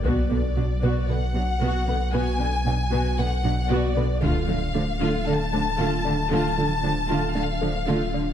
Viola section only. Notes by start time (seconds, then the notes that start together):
0.05 B3 F#4
0.30 D3 B3
0.56 F#3 D4
0.82 B3 F#4
1.09 D3 B3
1.35 F#3 D4
1.62 B3 F#4
1.88 D3 B3
2.13 B3 F#4
2.40 D3 B3
2.66 F#3 D4
2.92 B3 F#4
3.19 D3 B3
3.44 F#3 D4
3.70 B3 F#4
3.96 D3 B3
4.23 A3 F4
4.48 D3 A3
4.75 F3 D4
5.01 A3 F4
5.26 D3 A3
5.53 F3 D4
5.79 A3 F4
6.05 D3 A3
6.32 A3 F4
6.57 D3 A3
6.84 F3 D4
7.09 A3 F4
7.35 D3 A3
7.61 F3 D4
7.88 A3 F4
8.13 D3 A3